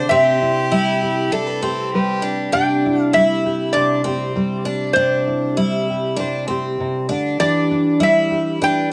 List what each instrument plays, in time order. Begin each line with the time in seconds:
Already playing: nylon-string guitar D3 C4 G4 C5, fiddle C5
0.09 nylon-string guitar C3 G4, twelve-string acoustic guitar C4, fiddle G4, resonator guitar played with a steel bar E5
0.42 nylon-string guitar E4
0.72 nylon-string guitar G3, twelve-string acoustic guitar E4
1.02 nylon-string guitar G4
1.32 nylon-string guitar C3 A4, twelve-string acoustic guitar D4, fiddle A4
1.47 nylon-string guitar B4
1.63 twelve-string acoustic guitar C4, nylon-string guitar G4
1.94 nylon-string guitar G3 B4, fiddle G4
2.22 twelve-string acoustic guitar D4
2.52 nylon-string guitar C3 G4, twelve-string acoustic guitar D4, resonator guitar played with a steel bar G5
2.86 nylon-string guitar E4
3.01 resonator guitar played with a steel bar F5
3.13 nylon-string guitar G3, twelve-string acoustic guitar E4, resonator guitar played with a steel bar E5
3.46 nylon-string guitar G4
3.73 nylon-string guitar C3 C5, twelve-string acoustic guitar D4, resonator guitar played with a steel bar D5
4.04 twelve-string acoustic guitar C4, nylon-string guitar G4
4.36 nylon-string guitar G3 C5
4.65 twelve-string acoustic guitar D4
4.93 nylon-string guitar C3 G4, twelve-string acoustic guitar D4, resonator guitar played with a steel bar C5
5.27 nylon-string guitar E4
5.57 nylon-string guitar G3, twelve-string acoustic guitar E4
5.90 nylon-string guitar G4
6.17 nylon-string guitar C3 C5, twelve-string acoustic guitar D4
6.48 twelve-string acoustic guitar C4, nylon-string guitar G4
6.80 nylon-string guitar C3
7.09 nylon-string guitar D3, twelve-string acoustic guitar D4
7.40 nylon-string guitar E3 G4, twelve-string acoustic guitar D4, resonator guitar played with a steel bar D5
7.71 nylon-string guitar D4
8.00 nylon-string guitar G3, twelve-string acoustic guitar E4, resonator guitar played with a steel bar E5
8.31 nylon-string guitar G4
8.61 twelve-string acoustic guitar D4, nylon-string guitar B4, resonator guitar played with a steel bar G5